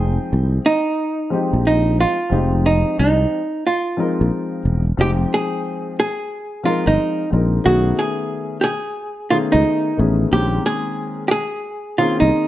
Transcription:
Already playing: fretless electric bass F1, upright piano F3 G#3 C4 D#4 G5, hollow-body jazz guitar G#4
0.33 fretless electric bass C2
0.66 hollow-body jazz guitar D#4
1.30 upright piano F3 G#3 C4 D#4 G4
1.53 fretless electric bass A#1
1.67 hollow-body jazz guitar D#4
2.00 hollow-body jazz guitar F4
2.30 fretless electric bass F1, upright piano F3 G#3 C4 D#4 G4
2.66 hollow-body jazz guitar D#4
2.99 fretless electric bass C2, hollow-body jazz guitar D#4
3.67 hollow-body jazz guitar F4
3.97 upright piano F3 G#3 C4 D#4 A#4
4.21 fretless electric bass A#1
4.65 fretless electric bass E1
4.97 fretless electric bass F1, upright piano F3 G#3 C4 D#4 G5, hollow-body jazz guitar G4
5.34 hollow-body jazz guitar G#4
6.00 hollow-body jazz guitar G#4
6.63 upright piano F3 G#3 C4 D#4 A#4, hollow-body jazz guitar F4
6.87 fretless electric bass G1, hollow-body jazz guitar D#4
7.30 fretless electric bass A#1, upright piano F3 G#3 C4 D#4 A#4
7.64 fretless electric bass B1, upright piano D#3 A3 B3 C#4 G#4, hollow-body jazz guitar F#4
7.99 hollow-body jazz guitar G#4
8.61 hollow-body jazz guitar G4 G#4
9.30 upright piano D#3 A3 B3 C#4 G#4, hollow-body jazz guitar F4
9.52 fretless electric bass C#2, hollow-body jazz guitar D#4
9.97 fretless electric bass A1, upright piano D#3 A3 B3 C#4 G#4
10.31 fretless electric bass A#1, upright piano D#3 G#3 A#3 C4 C#4, hollow-body jazz guitar G4
10.66 hollow-body jazz guitar G#4
11.28 hollow-body jazz guitar G4 G#4
11.98 upright piano D#3 A#3 C4 C#4 G#4, hollow-body jazz guitar F4
12.20 fretless electric bass C2, hollow-body jazz guitar D#4

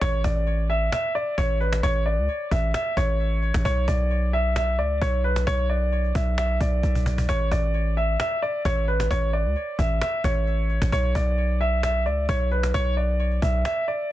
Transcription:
0.01 808-style bass A1, grand piano C#5, cajon bass
0.24 808-style bass A1, grand piano D5, cajon bass
0.47 cajon slap
0.70 grand piano E5, cajon slap
0.92 grand piano E5, cajon slap
1.15 grand piano D5, cajon slap
1.38 808-style bass A1, grand piano C#5, cajon bass
1.60 grand piano B4, cajon slap
1.73 cajon slap
1.83 808-style bass A1, grand piano C#5, cajon bass
2.06 grand piano D5
2.18 808-style bass C#2
2.29 cajon slap
2.51 808-style bass A1, grand piano E5, cajon bass
2.74 grand piano E5, cajon slap
2.97 808-style bass A1, grand piano C#5, cajon bass
3.20 cajon slap
3.42 cajon slap
3.54 808-style bass A1, cajon bass, cajon slap
3.65 808-style bass B1, grand piano C#5, cajon bass
3.88 808-style bass B1, grand piano D5, cajon bass
4.10 cajon slap
4.33 grand piano E5, cajon slap
4.56 grand piano E5, cajon slap
4.79 808-style bass C#2, grand piano D5, cajon slap
5.01 808-style bass B1, grand piano C#5, cajon bass
5.24 grand piano B4, cajon slap
5.36 cajon slap
5.47 808-style bass B1, grand piano C#5, cajon bass
5.69 grand piano D5
5.92 cajon slap
6.04 cajon slap
6.15 808-style bass B1, grand piano E5, cajon bass
6.38 grand piano E5, cajon slap
6.61 808-style bass B1, grand piano D5, cajon bass
6.83 808-style bass B1, cajon bass, cajon slap
6.95 cajon bass
7.06 cajon bass
7.18 cajon bass
7.29 808-style bass A1, grand piano C#5, cajon bass
7.51 808-style bass A1, grand piano D5, cajon bass
7.74 cajon slap
7.97 grand piano E5, cajon slap
8.20 grand piano E5, cajon slap
8.42 grand piano D5, cajon slap
8.65 808-style bass A1, grand piano C#5, cajon bass
8.88 grand piano B4, cajon slap
9.00 cajon slap
9.11 808-style bass A1, grand piano C#5, cajon bass
9.33 grand piano D5
9.45 808-style bass C#2
9.56 cajon slap
9.79 808-style bass A1, grand piano E5, cajon bass
10.01 grand piano E5, cajon slap
10.24 808-style bass A1, grand piano C#5, cajon bass
10.47 cajon slap
10.70 cajon slap
10.82 808-style bass A1, cajon bass, cajon slap
10.92 808-style bass B1, grand piano C#5, cajon bass
11.15 808-style bass B1, grand piano D5, cajon bass
11.38 cajon slap
11.61 grand piano E5, cajon slap
11.83 grand piano E5, cajon slap
12.06 808-style bass C#2, grand piano D5, cajon slap
12.29 808-style bass B1, grand piano C#5, cajon bass
12.51 grand piano B4, cajon slap
12.63 cajon slap
12.74 808-style bass B1, grand piano C#5, cajon bass
12.97 grand piano D5
13.20 cajon slap
13.32 cajon slap
13.42 808-style bass B1, grand piano E5, cajon bass
13.65 grand piano E5, cajon slap
13.88 grand piano D5, cajon slap

